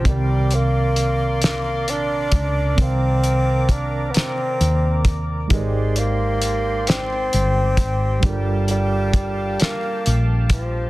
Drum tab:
HH |xxxxxx|xxxxxx|xxxxxx|xxxxxx|
SD |---o--|---o--|---o--|---o--|
BD |o----o|o-o--o|o----o|o-o--o|